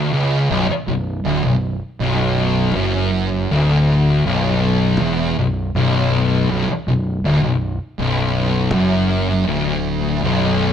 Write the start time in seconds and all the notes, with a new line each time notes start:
Already playing: D2
0.13 C#2
0.50 B0 B1
0.70 muted distorted electric guitar stroke, muted fingered electric bass stroke
0.88 B0 B1
1.25 D1 D2
1.44 B0 B1
2.00 B0 B1
2.75 F#1 F#2
3.51 D1 D2
4.25 B0 B1
5.00 E1 E2
5.38 B0 B1
5.75 B0 B1
6.50 B0 B1
6.69 muted fingered electric bass stroke, muted distorted electric guitar stroke
6.88 B0 B1
7.25 D1 D2
7.43 B0 B1
7.99 B0 B1
8.74 F#1 F#2
9.48 D1 D2
10.24 B0 B1